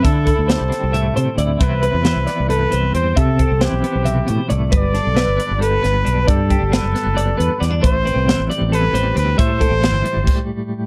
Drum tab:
CC |-------|-------|-------|-------|
HH |xxxxxxx|xxxxxxx|xxxxxxx|xxxxxxx|
SD |--oo---|--oo---|--o----|-oo--o-|
BD |oo-----|o------|oo-----|o------|

CC |-------|-------|----x--|
HH |xxxxxxx|xxxxxxx|xxxx---|
SD |--oo--o|--o----|--o----|
BD |oo-----|o------|oo--o--|